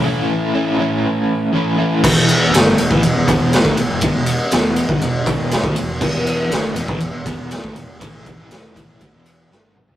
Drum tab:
CC |----------------|x---------------|----------------|x---------------|
RD |----------------|--x-x-x-x-x-x-x-|x-x-x-x-x-x-x-x-|--x-x-x-x-x-x-x-|
SD |----------------|----o-------o---|----o-------o---|----o-------o---|
T2 |----------------|----------------|----------------|----------------|
FT |----------------|----------------|----------------|----------------|
BD |----------------|o------o--o--o--|o------o--o--o--|o------o--o--o--|

CC |----------------|
RD |x-x-x-x-x-x-----|
SD |----o-------o---|
T2 |--------------o-|
FT |---------------o|
BD |o-o---o-o-------|